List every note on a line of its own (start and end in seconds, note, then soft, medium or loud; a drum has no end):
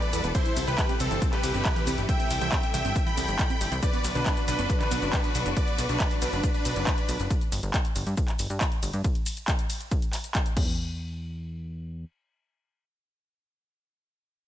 0.00 0.31 B2 medium
0.00 3.79 E3 medium
0.00 0.31 G3 medium
0.00 0.31 E4 medium
0.00 3.79 A4 medium
0.00 0.26 B4 medium
0.00 0.26 D5 medium
0.00 0.26 D5 loud
0.00 closed hi-hat soft
0.00 shaker soft
0.13 0.22 E2 medium
0.13 0.18 E3 medium
0.13 open hi-hat loud
0.13 ride medium
0.13 shaker medium
0.24 0.33 E1 medium
0.24 0.29 B3 medium
0.24 closed hi-hat soft
0.24 shaker soft
0.35 3.79 C3 medium
0.35 3.79 G3 medium
0.35 0.61 E4 medium
0.35 3.79 E4 medium
0.35 0.61 C5 loud
0.35 kick loud
0.35 closed hi-hat medium
0.35 ride medium
0.35 shaker soft
0.46 0.51 E3 medium
0.46 closed hi-hat soft
0.46 shaker soft
0.57 0.65 C2 medium
0.57 0.62 C4 medium
0.57 open hi-hat loud
0.57 ride medium
0.57 shaker medium
0.67 0.76 C2 medium
0.67 0.93 G4 medium
0.67 0.93 B4 loud
0.67 closed hi-hat soft
0.67 shaker soft
0.78 0.83 E3 medium
0.78 kick loud
0.78 clap loud
0.78 closed hi-hat medium
0.78 ride medium
0.78 shaker soft
0.89 0.94 C4 medium
0.89 closed hi-hat soft
0.89 shaker soft
1.00 1.09 C2 loud
1.00 1.26 C4 medium
1.00 1.26 A4 loud
1.00 open hi-hat loud
1.00 ride medium
1.00 shaker medium
1.11 1.19 G1 medium
1.11 1.16 E3 medium
1.11 closed hi-hat soft
1.11 shaker soft
1.22 1.27 C4 medium
1.22 kick loud
1.22 closed hi-hat medium
1.22 ride medium
1.22 shaker soft
1.32 2.00 G4 medium
1.32 2.00 B4 medium
1.32 2.00 B4 loud
1.32 clap soft
1.32 closed hi-hat soft
1.32 shaker soft
1.43 1.52 C2 loud
1.43 1.49 E3 medium
1.43 open hi-hat loud
1.43 ride medium
1.43 shaker medium
1.54 1.63 G1 medium
1.54 1.59 C4 medium
1.54 closed hi-hat soft
1.54 shaker soft
1.65 kick loud
1.65 clap loud
1.65 closed hi-hat medium
1.65 ride medium
1.65 shaker soft
1.76 1.81 E3 medium
1.76 closed hi-hat soft
1.76 shaker soft
1.87 1.96 C2 medium
1.87 1.92 C4 medium
1.87 open hi-hat loud
1.87 ride medium
1.87 shaker medium
1.98 2.06 G1 medium
1.98 closed hi-hat soft
1.98 shaker soft
2.08 2.14 E3 medium
2.08 2.34 E5 medium
2.08 2.34 G5 loud
2.08 kick loud
2.08 closed hi-hat medium
2.08 ride medium
2.08 shaker soft
2.20 2.25 C4 medium
2.20 closed hi-hat soft
2.20 shaker soft
2.30 2.39 C2 medium
2.30 open hi-hat loud
2.30 ride medium
2.30 shaker medium
2.41 2.50 C2 medium
2.41 2.46 E3 medium
2.41 2.67 E5 medium
2.41 2.67 G5 medium
2.41 2.67 G5 loud
2.41 closed hi-hat soft
2.41 shaker soft
2.52 2.57 C4 medium
2.52 kick loud
2.52 clap loud
2.52 closed hi-hat medium
2.52 ride medium
2.52 shaker soft
2.63 closed hi-hat soft
2.63 shaker soft
2.74 2.83 C2 loud
2.74 2.79 E3 medium
2.74 3.00 E5 medium
2.74 3.00 G5 loud
2.74 open hi-hat loud
2.74 ride medium
2.74 shaker medium
2.85 2.93 G1 medium
2.85 2.90 C4 medium
2.85 closed hi-hat soft
2.85 shaker soft
2.96 kick loud
2.96 closed hi-hat medium
2.96 ride medium
2.96 shaker soft
3.06 3.12 E3 medium
3.06 3.74 G5 medium
3.06 3.74 B5 medium
3.06 3.74 B5 loud
3.06 closed hi-hat soft
3.06 shaker soft
3.17 3.26 C2 medium
3.17 3.22 C4 medium
3.17 open hi-hat loud
3.17 ride medium
3.17 shaker medium
3.28 3.37 G1 medium
3.28 closed hi-hat soft
3.28 shaker soft
3.39 3.44 E3 medium
3.39 kick loud
3.39 clap loud
3.39 closed hi-hat medium
3.39 ride medium
3.39 shaker soft
3.50 3.55 C4 medium
3.50 closed hi-hat soft
3.50 shaker soft
3.61 3.69 G1 medium
3.61 open hi-hat loud
3.61 ride medium
3.61 shaker medium
3.72 3.80 C2 medium
3.72 3.77 E3 medium
3.72 closed hi-hat soft
3.72 shaker soft
3.83 7.27 B2 medium
3.83 7.27 D3 medium
3.83 3.88 D3 medium
3.83 7.27 F#3 medium
3.83 7.27 D4 medium
3.83 7.27 F#4 medium
3.83 4.08 B4 medium
3.83 4.08 D5 loud
3.83 kick loud
3.83 closed hi-hat medium
3.83 ride medium
3.83 shaker soft
3.93 3.99 B3 medium
3.93 closed hi-hat soft
3.93 shaker soft
4.04 4.13 B1 medium
4.04 open hi-hat loud
4.04 ride medium
4.04 shaker medium
4.15 4.24 B1 medium
4.15 4.20 D3 medium
4.15 4.41 D4 medium
4.15 4.41 B4 loud
4.15 closed hi-hat soft
4.15 shaker soft
4.26 4.31 B3 medium
4.26 kick loud
4.26 clap loud
4.26 closed hi-hat medium
4.26 ride medium
4.26 shaker soft
4.37 closed hi-hat soft
4.37 shaker soft
4.48 4.56 B1 loud
4.48 4.53 D3 medium
4.48 4.74 D4 medium
4.48 4.74 B4 loud
4.48 open hi-hat loud
4.48 ride medium
4.48 shaker medium
4.59 4.67 F#1 medium
4.59 4.64 B3 medium
4.59 closed hi-hat soft
4.59 shaker soft
4.70 kick loud
4.70 closed hi-hat medium
4.70 ride medium
4.70 shaker soft
4.80 4.86 D3 medium
4.80 5.48 D4 medium
4.80 5.48 B4 loud
4.80 5.48 B4 medium
4.80 clap soft
4.80 closed hi-hat soft
4.80 shaker soft
4.91 5.00 B1 loud
4.91 4.96 B3 medium
4.91 open hi-hat loud
4.91 ride medium
4.91 shaker medium
5.02 5.11 F#1 medium
5.02 closed hi-hat soft
5.02 shaker soft
5.13 5.18 D3 medium
5.13 kick loud
5.13 clap loud
5.13 closed hi-hat medium
5.13 ride medium
5.13 shaker soft
5.24 5.29 B3 medium
5.24 closed hi-hat soft
5.24 shaker soft
5.35 5.43 B1 medium
5.35 open hi-hat loud
5.35 ride medium
5.35 shaker medium
5.46 5.54 F#1 medium
5.46 5.51 D3 medium
5.46 closed hi-hat soft
5.46 shaker soft
5.56 5.82 B4 medium
5.56 5.82 D5 loud
5.56 kick loud
5.56 closed hi-hat medium
5.56 ride medium
5.56 shaker soft
5.68 closed hi-hat soft
5.68 shaker soft
5.78 5.87 B1 medium
5.78 open hi-hat loud
5.78 ride medium
5.78 shaker medium
5.89 5.98 B1 medium
5.89 6.15 D4 medium
5.89 6.15 B4 loud
5.89 closed hi-hat soft
5.89 shaker soft
6.00 kick loud
6.00 clap loud
6.00 closed hi-hat medium
6.00 ride medium
6.00 shaker soft
6.11 closed hi-hat soft
6.11 shaker soft
6.22 6.30 B1 loud
6.22 6.48 D4 medium
6.22 6.48 B4 loud
6.22 open hi-hat medium
6.22 ride medium
6.22 shaker medium
6.33 6.41 F#1 medium
6.33 closed hi-hat soft
6.33 shaker soft
6.43 kick loud
6.43 closed hi-hat medium
6.43 ride medium
6.43 shaker soft
6.54 7.22 D4 medium
6.54 7.22 B4 loud
6.54 closed hi-hat soft
6.54 shaker soft
6.65 6.74 B1 medium
6.65 open hi-hat loud
6.65 ride medium
6.65 shaker medium
6.76 6.85 F#1 medium
6.76 closed hi-hat soft
6.76 shaker soft
6.87 kick loud
6.87 clap loud
6.87 closed hi-hat medium
6.87 ride medium
6.87 shaker soft
6.98 closed hi-hat soft
6.98 shaker soft
7.09 7.17 B1 medium
7.09 open hi-hat medium
7.09 ride medium
7.09 shaker medium
7.20 7.28 F#1 medium
7.20 closed hi-hat soft
7.20 shaker soft
7.30 kick loud
7.30 closed hi-hat medium
7.30 ride medium
7.30 shaker soft
7.41 closed hi-hat soft
7.41 shaker soft
7.52 7.61 G1 medium
7.52 open hi-hat loud
7.52 ride medium
7.52 shaker medium
7.63 7.72 G1 medium
7.63 closed hi-hat soft
7.63 shaker soft
7.74 kick loud
7.74 clap loud
7.74 closed hi-hat medium
7.74 ride medium
7.74 shaker soft
7.85 closed hi-hat soft
7.85 shaker soft
7.96 8.04 G1 loud
7.96 open hi-hat medium
7.96 ride medium
7.96 shaker medium
8.06 8.15 G2 medium
8.06 closed hi-hat soft
8.06 shaker soft
8.17 kick loud
8.17 closed hi-hat medium
8.17 ride medium
8.17 shaker soft
8.28 clap soft
8.28 closed hi-hat soft
8.28 shaker soft
8.39 8.48 G1 medium
8.39 open hi-hat loud
8.39 ride medium
8.39 shaker medium
8.50 8.59 G2 medium
8.50 closed hi-hat soft
8.50 shaker soft
8.61 kick loud
8.61 clap loud
8.61 closed hi-hat medium
8.61 ride medium
8.61 shaker soft
8.72 closed hi-hat soft
8.72 shaker soft
8.83 8.91 G1 medium
8.83 open hi-hat medium
8.83 ride medium
8.83 shaker medium
8.93 9.02 G2 medium
8.93 closed hi-hat soft
8.93 shaker soft
9.04 kick loud
9.04 closed hi-hat medium
9.04 ride medium
9.04 shaker soft
9.15 closed hi-hat soft
9.15 shaker soft
9.26 open hi-hat loud
9.26 ride medium
9.26 shaker medium
9.37 closed hi-hat soft
9.37 shaker soft
9.48 kick loud
9.48 clap loud
9.48 closed hi-hat medium
9.48 ride medium
9.48 shaker soft
9.59 closed hi-hat soft
9.59 shaker soft
9.70 open hi-hat medium
9.70 ride medium
9.70 shaker medium
9.81 closed hi-hat soft
9.81 shaker soft
9.91 kick loud
9.91 closed hi-hat medium
9.91 ride medium
9.91 shaker soft
10.02 closed hi-hat soft
10.02 shaker soft
10.13 clap soft
10.13 open hi-hat loud
10.13 ride medium
10.13 shaker medium
10.24 closed hi-hat soft
10.24 shaker soft
10.35 kick loud
10.35 clap loud
10.35 closed hi-hat medium
10.35 ride medium
10.35 shaker soft
10.46 closed hi-hat soft
10.46 shaker soft
10.57 12.05 E2 medium
10.57 kick loud
10.57 crash medium